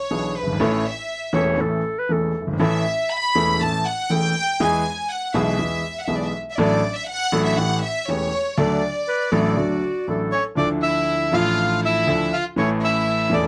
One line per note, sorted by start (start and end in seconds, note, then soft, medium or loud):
0.00 0.36 C#5 medium
0.11 0.32 B1 medium
0.11 0.32 B2 medium
0.11 0.32 E3 soft
0.11 0.32 B3 soft
0.11 0.32 D4 soft
0.11 0.32 G#4 medium
0.36 0.61 B4 medium
0.42 0.49 F#1 soft
0.47 0.54 G1 medium
0.52 0.60 G#1 medium
0.60 0.81 A1 medium
0.60 0.82 A2 medium
0.60 0.81 E3 medium
0.60 0.81 A3 medium
0.60 0.81 C#4 medium
0.60 0.82 A4 medium
0.60 0.86 C#5 medium
0.87 1.36 E5 medium
1.33 1.55 E1 medium
1.33 1.55 E2 medium
1.33 1.55 E3 medium
1.33 1.56 A3 medium
1.33 1.55 C#4 medium
1.33 1.56 A4 medium
1.33 1.62 C#5 medium
1.58 1.80 A1 medium
1.58 1.80 A2 medium
1.58 1.80 E3 soft
1.58 1.80 A3 soft
1.58 1.81 C#4 soft
1.58 1.80 A4 medium
1.58 2.01 A4 medium
1.99 2.14 B4 medium
2.09 2.31 E1 medium
2.09 2.31 E2 soft
2.09 2.31 E3 soft
2.09 2.31 A3 soft
2.09 2.31 C#4 soft
2.09 2.32 A4 soft
2.09 2.50 A4 medium
2.40 2.48 F#1 soft
2.47 2.54 G1 medium
2.53 2.60 G#1 medium
2.59 2.82 A1 medium
2.59 2.82 A2 medium
2.59 2.82 E3 medium
2.59 2.82 A3 medium
2.59 2.81 C#4 medium
2.59 2.82 A4 medium
2.59 3.08 E5 medium
3.11 3.61 B5 loud
3.35 3.57 E1 medium
3.35 3.57 E2 medium
3.35 3.57 E3 medium
3.35 3.57 A3 medium
3.35 3.57 C#4 medium
3.35 3.57 A4 medium
3.61 3.82 A1 medium
3.61 3.82 A2 soft
3.61 3.82 E3 soft
3.61 3.83 A3 soft
3.61 3.82 C#4 soft
3.61 3.83 A4 soft
3.61 3.86 A5 medium
3.86 4.11 F#5 medium
4.09 4.31 E1 soft
4.09 4.32 E2 medium
4.09 4.32 E3 soft
4.09 4.32 A3 soft
4.09 4.32 C#4 soft
4.09 4.32 A4 medium
4.09 4.61 G5 loud
4.60 4.82 E2 medium
4.60 4.82 E3 medium
4.60 4.82 G#3 medium
4.60 4.81 B3 medium
4.60 4.82 G#4 medium
4.60 5.11 G#5 medium
5.11 5.36 F#5 medium
5.34 5.56 B1 medium
5.34 5.56 B2 medium
5.34 5.56 E3 medium
5.34 5.56 G#3 medium
5.34 5.56 B3 medium
5.34 5.56 G#4 medium
5.34 5.99 E5 medium
5.59 5.81 E2 medium
5.59 5.81 E3 medium
5.59 5.81 G#3 soft
5.59 5.81 B3 soft
5.59 5.81 G#4 medium
6.00 6.08 F#5 medium
6.07 6.30 B1 medium
6.07 6.30 B2 medium
6.07 6.29 E3 soft
6.07 6.30 G#3 soft
6.07 6.30 B3 soft
6.07 6.30 G#4 medium
6.07 6.16 E5 medium
6.16 6.25 D5 medium
6.26 6.35 E5 medium
6.51 6.59 E5 medium
6.58 6.80 A1 medium
6.58 6.80 A2 medium
6.58 6.79 F#3 medium
6.58 6.80 A3 medium
6.58 6.80 D4 medium
6.58 6.80 A4 medium
6.58 6.96 D5 medium
6.95 7.08 E5 medium
7.08 7.43 F#5 loud
7.32 7.54 A1 medium
7.32 7.54 A2 medium
7.32 7.54 F#3 medium
7.32 7.54 A3 medium
7.32 7.54 D4 medium
7.32 7.54 A4 medium
7.45 7.57 E5 medium
7.57 7.79 A1 medium
7.57 7.79 A2 medium
7.57 7.79 E3 soft
7.57 7.79 A3 soft
7.57 7.79 C#4 soft
7.57 7.79 G4 medium
7.57 7.83 F#5 medium
7.83 8.07 E5 medium
8.08 8.29 E1 medium
8.08 8.29 E2 medium
8.08 8.29 E3 soft
8.08 8.30 A3 soft
8.08 8.29 C#4 soft
8.08 8.30 G4 soft
8.08 8.58 C#5 loud
8.58 8.79 D2 medium
8.58 8.79 D3 medium
8.58 8.79 F#3 medium
8.58 8.79 A3 medium
8.58 8.79 D4 medium
8.58 8.79 A4 medium
8.58 10.10 D5 medium
9.09 9.31 B4 medium
9.31 9.54 A1 medium
9.31 9.54 A2 medium
9.31 9.54 F#3 medium
9.31 9.53 A3 medium
9.31 9.54 D4 medium
9.31 9.58 A4 medium
9.31 9.54 A4 medium
9.57 9.79 D2 soft
9.57 9.79 D3 medium
9.57 9.79 F#3 soft
9.57 9.79 A3 soft
9.57 9.79 D4 soft
9.57 10.08 F#4 medium
9.57 9.79 A4 soft
10.07 10.30 A1 medium
10.07 10.30 A2 soft
10.07 10.29 F#3 soft
10.07 10.30 A3 soft
10.07 10.29 D4 soft
10.07 10.30 A4 soft
10.07 10.56 A4 medium
10.32 10.44 C#4 medium
10.32 10.44 C#5 medium
10.55 11.30 D2 medium
10.55 11.30 D3 medium
10.55 11.29 F3 medium
10.55 11.30 D4 medium
10.55 11.30 E4 medium
10.55 11.31 A4 medium
10.55 10.69 D5 medium
10.60 10.71 D4 medium
10.83 11.31 E4 medium
10.83 11.35 E5 medium
11.31 12.05 A1 medium
11.31 12.05 A2 medium
11.31 12.04 F3 medium
11.31 12.04 D4 medium
11.31 12.05 F4 medium
11.31 11.81 F4 medium
11.31 12.06 A4 medium
11.31 11.81 F5 medium
11.84 12.30 E4 medium
11.84 12.36 E5 medium
12.07 12.29 D2 medium
12.07 12.29 D3 medium
12.07 12.29 F3 medium
12.07 12.29 D4 medium
12.07 12.29 E4 medium
12.07 12.30 A4 medium
12.33 12.45 F4 medium
12.33 12.44 F5 medium
12.56 13.29 A1 medium
12.56 13.29 A2 medium
12.56 13.28 E3 medium
12.56 13.29 A3 medium
12.56 12.70 C#4 medium
12.56 13.30 C#4 medium
12.56 13.30 A4 medium
12.56 12.69 C#5 medium
12.83 13.29 E4 medium
12.83 13.35 E5 medium
13.30 13.48 E1 medium
13.30 13.48 E2 medium
13.30 13.48 E3 medium
13.30 13.48 A3 medium
13.30 13.48 C#4 medium
13.30 13.45 D4 medium
13.30 13.45 D5 medium
13.34 13.48 A4 medium